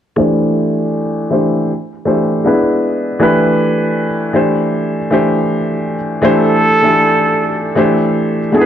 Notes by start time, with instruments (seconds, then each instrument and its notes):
0.16 felt piano E3 A3 D4 G4 C5
1.30 felt piano E3 A3 D4 G4 C5
2.05 felt piano E3 A3 D4 G4 C5
2.44 felt piano G#3 B3 D4 E4 B4
3.19 felt piano E3 A3 D4 G4 B4
4.33 felt piano E3 A3 D4 G4 C5
5.10 felt piano E3 A3 D4 G4 C5
6.22 felt piano E3 A3 D4 G4 C5
6.26 muted trumpet A4
6.82 felt piano E3 A3 D4 G4 D5
7.75 felt piano E3 A3 D4 G4 C5
8.52 felt piano G#3 B3 D4 E4 A4, muted trumpet G#4
8.61 felt piano B4